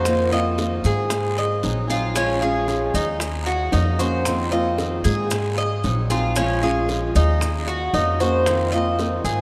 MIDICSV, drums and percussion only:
0, 0, Header, 1, 2, 480
1, 0, Start_track
1, 0, Key_signature, -5, "minor"
1, 0, Tempo, 525394
1, 54, Time_signature, 4, 2, 24, 8
1, 8597, End_track
2, 0, Start_track
2, 0, Title_t, "Drums"
2, 48, Note_on_c, 9, 60, 64
2, 52, Note_on_c, 9, 70, 82
2, 53, Note_on_c, 9, 74, 69
2, 140, Note_off_c, 9, 60, 0
2, 143, Note_off_c, 9, 70, 0
2, 144, Note_off_c, 9, 74, 0
2, 296, Note_on_c, 9, 70, 30
2, 387, Note_off_c, 9, 70, 0
2, 530, Note_on_c, 9, 73, 70
2, 533, Note_on_c, 9, 70, 31
2, 534, Note_on_c, 9, 60, 57
2, 621, Note_off_c, 9, 73, 0
2, 624, Note_off_c, 9, 70, 0
2, 625, Note_off_c, 9, 60, 0
2, 768, Note_on_c, 9, 73, 72
2, 771, Note_on_c, 9, 70, 68
2, 778, Note_on_c, 9, 60, 33
2, 860, Note_off_c, 9, 73, 0
2, 863, Note_off_c, 9, 70, 0
2, 870, Note_off_c, 9, 60, 0
2, 1007, Note_on_c, 9, 60, 62
2, 1008, Note_on_c, 9, 74, 75
2, 1009, Note_on_c, 9, 70, 85
2, 1098, Note_off_c, 9, 60, 0
2, 1099, Note_off_c, 9, 74, 0
2, 1101, Note_off_c, 9, 70, 0
2, 1252, Note_on_c, 9, 60, 32
2, 1259, Note_on_c, 9, 70, 30
2, 1344, Note_off_c, 9, 60, 0
2, 1351, Note_off_c, 9, 70, 0
2, 1490, Note_on_c, 9, 73, 70
2, 1493, Note_on_c, 9, 60, 35
2, 1493, Note_on_c, 9, 61, 81
2, 1495, Note_on_c, 9, 70, 30
2, 1581, Note_off_c, 9, 73, 0
2, 1584, Note_off_c, 9, 60, 0
2, 1584, Note_off_c, 9, 61, 0
2, 1587, Note_off_c, 9, 70, 0
2, 1733, Note_on_c, 9, 73, 69
2, 1735, Note_on_c, 9, 60, 33
2, 1738, Note_on_c, 9, 70, 64
2, 1824, Note_off_c, 9, 73, 0
2, 1826, Note_off_c, 9, 60, 0
2, 1830, Note_off_c, 9, 70, 0
2, 1969, Note_on_c, 9, 70, 82
2, 1970, Note_on_c, 9, 60, 65
2, 1976, Note_on_c, 9, 74, 67
2, 2061, Note_off_c, 9, 60, 0
2, 2061, Note_off_c, 9, 70, 0
2, 2067, Note_off_c, 9, 74, 0
2, 2215, Note_on_c, 9, 70, 32
2, 2307, Note_off_c, 9, 70, 0
2, 2448, Note_on_c, 9, 60, 54
2, 2456, Note_on_c, 9, 70, 30
2, 2457, Note_on_c, 9, 73, 66
2, 2539, Note_off_c, 9, 60, 0
2, 2547, Note_off_c, 9, 70, 0
2, 2548, Note_off_c, 9, 73, 0
2, 2684, Note_on_c, 9, 60, 33
2, 2692, Note_on_c, 9, 70, 70
2, 2695, Note_on_c, 9, 73, 66
2, 2775, Note_off_c, 9, 60, 0
2, 2784, Note_off_c, 9, 70, 0
2, 2786, Note_off_c, 9, 73, 0
2, 2924, Note_on_c, 9, 60, 61
2, 2930, Note_on_c, 9, 74, 72
2, 2934, Note_on_c, 9, 70, 82
2, 3015, Note_off_c, 9, 60, 0
2, 3022, Note_off_c, 9, 74, 0
2, 3026, Note_off_c, 9, 70, 0
2, 3168, Note_on_c, 9, 60, 35
2, 3176, Note_on_c, 9, 70, 28
2, 3259, Note_off_c, 9, 60, 0
2, 3267, Note_off_c, 9, 70, 0
2, 3400, Note_on_c, 9, 60, 33
2, 3400, Note_on_c, 9, 61, 84
2, 3407, Note_on_c, 9, 73, 67
2, 3414, Note_on_c, 9, 70, 29
2, 3492, Note_off_c, 9, 60, 0
2, 3492, Note_off_c, 9, 61, 0
2, 3499, Note_off_c, 9, 73, 0
2, 3505, Note_off_c, 9, 70, 0
2, 3647, Note_on_c, 9, 60, 33
2, 3648, Note_on_c, 9, 73, 66
2, 3651, Note_on_c, 9, 70, 68
2, 3739, Note_off_c, 9, 60, 0
2, 3739, Note_off_c, 9, 73, 0
2, 3742, Note_off_c, 9, 70, 0
2, 3886, Note_on_c, 9, 60, 68
2, 3889, Note_on_c, 9, 70, 88
2, 3894, Note_on_c, 9, 74, 68
2, 3977, Note_off_c, 9, 60, 0
2, 3981, Note_off_c, 9, 70, 0
2, 3986, Note_off_c, 9, 74, 0
2, 4132, Note_on_c, 9, 70, 31
2, 4224, Note_off_c, 9, 70, 0
2, 4371, Note_on_c, 9, 60, 58
2, 4374, Note_on_c, 9, 73, 65
2, 4378, Note_on_c, 9, 70, 30
2, 4462, Note_off_c, 9, 60, 0
2, 4466, Note_off_c, 9, 73, 0
2, 4469, Note_off_c, 9, 70, 0
2, 4610, Note_on_c, 9, 70, 76
2, 4616, Note_on_c, 9, 60, 34
2, 4616, Note_on_c, 9, 73, 67
2, 4701, Note_off_c, 9, 70, 0
2, 4707, Note_off_c, 9, 60, 0
2, 4707, Note_off_c, 9, 73, 0
2, 4847, Note_on_c, 9, 70, 88
2, 4855, Note_on_c, 9, 74, 67
2, 4856, Note_on_c, 9, 60, 62
2, 4939, Note_off_c, 9, 70, 0
2, 4947, Note_off_c, 9, 60, 0
2, 4947, Note_off_c, 9, 74, 0
2, 5090, Note_on_c, 9, 60, 34
2, 5092, Note_on_c, 9, 70, 31
2, 5181, Note_off_c, 9, 60, 0
2, 5183, Note_off_c, 9, 70, 0
2, 5332, Note_on_c, 9, 70, 30
2, 5335, Note_on_c, 9, 73, 69
2, 5339, Note_on_c, 9, 60, 34
2, 5339, Note_on_c, 9, 61, 79
2, 5424, Note_off_c, 9, 70, 0
2, 5426, Note_off_c, 9, 73, 0
2, 5431, Note_off_c, 9, 60, 0
2, 5431, Note_off_c, 9, 61, 0
2, 5573, Note_on_c, 9, 73, 74
2, 5576, Note_on_c, 9, 70, 70
2, 5577, Note_on_c, 9, 60, 34
2, 5665, Note_off_c, 9, 73, 0
2, 5667, Note_off_c, 9, 70, 0
2, 5668, Note_off_c, 9, 60, 0
2, 5808, Note_on_c, 9, 70, 89
2, 5814, Note_on_c, 9, 60, 67
2, 5821, Note_on_c, 9, 74, 67
2, 5899, Note_off_c, 9, 70, 0
2, 5906, Note_off_c, 9, 60, 0
2, 5913, Note_off_c, 9, 74, 0
2, 6052, Note_on_c, 9, 70, 30
2, 6144, Note_off_c, 9, 70, 0
2, 6291, Note_on_c, 9, 70, 31
2, 6293, Note_on_c, 9, 60, 57
2, 6301, Note_on_c, 9, 73, 73
2, 6383, Note_off_c, 9, 70, 0
2, 6384, Note_off_c, 9, 60, 0
2, 6393, Note_off_c, 9, 73, 0
2, 6531, Note_on_c, 9, 60, 34
2, 6537, Note_on_c, 9, 70, 73
2, 6537, Note_on_c, 9, 73, 70
2, 6622, Note_off_c, 9, 60, 0
2, 6628, Note_off_c, 9, 70, 0
2, 6629, Note_off_c, 9, 73, 0
2, 6772, Note_on_c, 9, 60, 65
2, 6777, Note_on_c, 9, 70, 92
2, 6778, Note_on_c, 9, 74, 69
2, 6864, Note_off_c, 9, 60, 0
2, 6869, Note_off_c, 9, 70, 0
2, 6870, Note_off_c, 9, 74, 0
2, 7011, Note_on_c, 9, 60, 33
2, 7023, Note_on_c, 9, 70, 31
2, 7103, Note_off_c, 9, 60, 0
2, 7114, Note_off_c, 9, 70, 0
2, 7252, Note_on_c, 9, 60, 34
2, 7252, Note_on_c, 9, 61, 87
2, 7257, Note_on_c, 9, 73, 70
2, 7258, Note_on_c, 9, 70, 29
2, 7343, Note_off_c, 9, 60, 0
2, 7343, Note_off_c, 9, 61, 0
2, 7348, Note_off_c, 9, 73, 0
2, 7349, Note_off_c, 9, 70, 0
2, 7493, Note_on_c, 9, 73, 72
2, 7494, Note_on_c, 9, 60, 35
2, 7494, Note_on_c, 9, 70, 65
2, 7585, Note_off_c, 9, 70, 0
2, 7585, Note_off_c, 9, 73, 0
2, 7586, Note_off_c, 9, 60, 0
2, 7732, Note_on_c, 9, 60, 69
2, 7734, Note_on_c, 9, 74, 64
2, 7735, Note_on_c, 9, 70, 94
2, 7824, Note_off_c, 9, 60, 0
2, 7825, Note_off_c, 9, 74, 0
2, 7827, Note_off_c, 9, 70, 0
2, 7977, Note_on_c, 9, 70, 31
2, 8068, Note_off_c, 9, 70, 0
2, 8211, Note_on_c, 9, 73, 69
2, 8216, Note_on_c, 9, 60, 54
2, 8218, Note_on_c, 9, 70, 29
2, 8302, Note_off_c, 9, 73, 0
2, 8307, Note_off_c, 9, 60, 0
2, 8310, Note_off_c, 9, 70, 0
2, 8450, Note_on_c, 9, 73, 69
2, 8453, Note_on_c, 9, 70, 71
2, 8455, Note_on_c, 9, 60, 35
2, 8542, Note_off_c, 9, 73, 0
2, 8545, Note_off_c, 9, 70, 0
2, 8546, Note_off_c, 9, 60, 0
2, 8597, End_track
0, 0, End_of_file